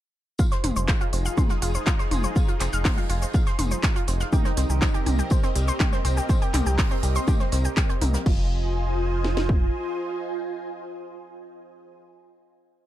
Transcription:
0.39 analog synth pad D#4 F4 G#4, synth arpeggio sound F4 F5, kick, tambourine, shaker
0.52 synth arpeggio sound C5 C6, snare, shaker
0.64 analog synth bass F1, synth arpeggio sound C5 C6, snare, open hi-hat, mid tom, tambourine
0.76 analog synth bass F1, synth arpeggio sound C5 C6, shaker
0.88 synth arpeggio sound F4 F5, kick, snare, clap, tambourine, shaker
1.01 synth arpeggio sound F4 F5, closed hi-hat, shaker
1.13 analog synth bass F1, synth arpeggio sound C4 C5, open hi-hat, tambourine
1.26 synth arpeggio sound F5 F6, shaker
1.38 synth arpeggio sound C5 C6, kick, mid tom, tambourine, shaker
1.49 synth arpeggio sound F4 F5, snare, shaker
1.62 analog synth bass F1, synth arpeggio sound F4 F5, open hi-hat, tambourine
1.75 synth arpeggio sound C5 C6, shaker
1.86 synth arpeggio sound F4 F5, kick, snare, clap, tambourine, shaker
1.99 synth arpeggio sound C5 C6, snare, shaker
2.11 analog synth bass F1, synth arpeggio sound C5 C6, open hi-hat, mid tom, tambourine
2.24 synth arpeggio sound C5 C6, shaker
2.36 synth arpeggio sound F4 F5, kick, tambourine, shaker
2.48 synth arpeggio sound F4 F5, closed hi-hat, shaker
2.60 analog synth bass F1, synth arpeggio sound C4 C5, snare, clap, open hi-hat, tambourine
2.73 analog synth bass F1, synth arpeggio sound F5 F6, shaker
2.85 synth arpeggio sound C5 C6, kick, snare, clap, open hi-hat, mid tom, shaker
2.98 synth arpeggio sound F4 F5, shaker
3.09 analog synth bass F1, synth arpeggio sound F4 F5, open hi-hat, tambourine
3.22 synth arpeggio sound C5 C6, shaker
3.33 synth arpeggio sound F4 F5, kick, tambourine, shaker
3.47 synth arpeggio sound C5 C6, snare, shaker
3.59 analog synth bass F1, synth arpeggio sound C5 C6, open hi-hat, mid tom, tambourine
3.71 synth arpeggio sound C5 C6, shaker
3.83 synth arpeggio sound F4 F5, kick, snare, clap, tambourine, shaker
3.96 synth arpeggio sound F4 F5, closed hi-hat, shaker
4.07 analog synth bass F1, synth arpeggio sound C4 C5, snare, open hi-hat, tambourine
4.20 synth arpeggio sound F5 F6, snare, shaker
4.32 analog polysynth D#3 D#4, analog synth pad C4 G4 A#4 D#5, synth arpeggio sound G4 G5, kick, mid tom, tambourine, shaker
4.45 synth arpeggio sound C4 C5, snare, shaker
4.57 analog synth bass C2, synth arpeggio sound C4 C5, snare, open hi-hat, tambourine
4.70 analog synth bass C2, synth arpeggio sound G4 G5, shaker
4.82 synth arpeggio sound C4 C5, kick, snare, clap, tambourine, shaker
4.94 synth arpeggio sound G4 G5, closed hi-hat, shaker
5.06 analog synth bass C2, synth arpeggio sound G4 G5, open hi-hat, mid tom, tambourine
5.19 synth arpeggio sound G4 G5, shaker
5.30 synth arpeggio sound C4 C5, kick, tambourine, shaker
5.43 synth arpeggio sound C4 C5, snare, shaker
5.55 analog synth bass C2, synth arpeggio sound G3 G4, open hi-hat, tambourine
5.68 synth arpeggio sound C5 C6, shaker
5.80 synth arpeggio sound G4 G5, kick, snare, clap, mid tom, tambourine, shaker
5.93 synth arpeggio sound C4 C5, snare, shaker
6.05 analog synth bass C2, synth arpeggio sound C4 C5, open hi-hat, tambourine
6.17 synth arpeggio sound G4 G5, shaker
6.29 synth arpeggio sound C4 C5, kick, tambourine, shaker
6.42 synth arpeggio sound G4 G5, closed hi-hat, shaker
6.54 analog synth bass C2, synth arpeggio sound G4 G5, snare, clap, open hi-hat, mid tom, tambourine
6.66 analog synth bass C2, synth arpeggio sound G4 G5, shaker
6.78 synth arpeggio sound C4 C5, kick, snare, clap, open hi-hat, shaker
6.91 synth arpeggio sound C4 C5, shaker
7.03 analog synth bass C2, synth arpeggio sound G3 G4, open hi-hat, tambourine
7.16 synth arpeggio sound C5 C6, shaker
7.27 synth arpeggio sound G4 G5, kick, mid tom, tambourine, shaker
7.40 synth arpeggio sound C4 C5, snare, shaker
7.52 analog synth bass C2, synth arpeggio sound C4 C5, snare, open hi-hat, tambourine
7.65 synth arpeggio sound G4 G5, shaker
7.76 synth arpeggio sound G4 G5, kick, snare, clap, tambourine, shaker
7.89 synth arpeggio sound C4 C5, closed hi-hat, shaker
8.01 analog synth bass C2, synth arpeggio sound A#3 A#4, snare, open hi-hat, mid tom, tambourine
8.14 synth arpeggio sound A#3 A#4, snare, shaker
8.26 analog synth bass F1, analog polysynth F4, synth arpeggio sound F4, analog synth pad F4 C5 D#5 G#5, kick, crash
9.24 snare
9.37 snare
9.49 kick

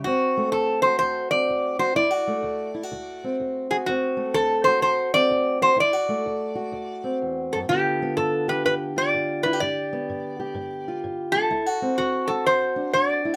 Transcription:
0.04 steel-string acoustic guitar D2 C4, resonator guitar played with a steel bar F#4
0.37 steel-string acoustic guitar A3
0.52 steel-string acoustic guitar D2, resonator guitar played with a steel bar A4
0.82 steel-string acoustic guitar F#4, resonator guitar played with a steel bar C5
0.99 steel-string acoustic guitar D2, resonator guitar played with a steel bar C5
1.31 steel-string acoustic guitar C4, resonator guitar played with a steel bar D5
1.49 steel-string acoustic guitar D2
1.79 steel-string acoustic guitar F#4, resonator guitar played with a steel bar C5
1.95 steel-string acoustic guitar D2 E4, resonator guitar played with a steel bar D5
2.11 steel-string acoustic guitar F#4
2.27 steel-string acoustic guitar A3
2.43 steel-string acoustic guitar D2
2.74 steel-string acoustic guitar E4
2.83 steel-string acoustic guitar F#4
2.92 steel-string acoustic guitar D2
3.24 steel-string acoustic guitar C4
3.40 steel-string acoustic guitar D2
3.71 steel-string acoustic guitar F#4, resonator guitar played with a steel bar G#4
3.86 steel-string acoustic guitar D2 C4, resonator guitar played with a steel bar F#4
4.17 steel-string acoustic guitar A3
4.34 steel-string acoustic guitar D2, resonator guitar played with a steel bar A4
4.64 steel-string acoustic guitar F#4, resonator guitar played with a steel bar C5
4.82 steel-string acoustic guitar D2, resonator guitar played with a steel bar C5
5.14 steel-string acoustic guitar C4, resonator guitar played with a steel bar D5
5.30 steel-string acoustic guitar D2
5.62 steel-string acoustic guitar F#4, resonator guitar played with a steel bar C5
5.76 steel-string acoustic guitar D2 E4, resonator guitar played with a steel bar D5
5.93 steel-string acoustic guitar F#4
6.09 steel-string acoustic guitar A3
6.26 steel-string acoustic guitar D2
6.55 steel-string acoustic guitar F#4
6.72 steel-string acoustic guitar D2
7.04 steel-string acoustic guitar C4
7.22 steel-string acoustic guitar E2
7.53 steel-string acoustic guitar F#2, resonator guitar played with a steel bar A4
7.69 steel-string acoustic guitar G2 D3 B3 F4, resonator guitar played with a steel bar G4
8.02 steel-string acoustic guitar B3
8.17 steel-string acoustic guitar G2, resonator guitar played with a steel bar A4
8.48 steel-string acoustic guitar G4, resonator guitar played with a steel bar B4
8.65 steel-string acoustic guitar G2, resonator guitar played with a steel bar B4
8.96 steel-string acoustic guitar F4, resonator guitar played with a steel bar D5
9.14 steel-string acoustic guitar G2
9.43 steel-string acoustic guitar E4, resonator guitar played with a steel bar B4
9.53 steel-string acoustic guitar G4
9.60 steel-string acoustic guitar G2 G4, resonator guitar played with a steel bar D5
9.93 steel-string acoustic guitar B3
10.09 steel-string acoustic guitar G2
10.40 steel-string acoustic guitar G4
10.55 steel-string acoustic guitar G2
10.88 steel-string acoustic guitar F4
11.04 steel-string acoustic guitar G2
11.32 steel-string acoustic guitar G4, resonator guitar played with a steel bar A4
11.51 steel-string acoustic guitar D2 E4
11.66 steel-string acoustic guitar F#4
11.82 steel-string acoustic guitar C4
11.98 steel-string acoustic guitar D2, resonator guitar played with a steel bar F#4
12.28 steel-string acoustic guitar F#4, resonator guitar played with a steel bar A4
12.46 steel-string acoustic guitar D2, resonator guitar played with a steel bar C5
12.76 steel-string acoustic guitar D4
12.93 steel-string acoustic guitar D2, resonator guitar played with a steel bar D5
13.25 steel-string acoustic guitar E4

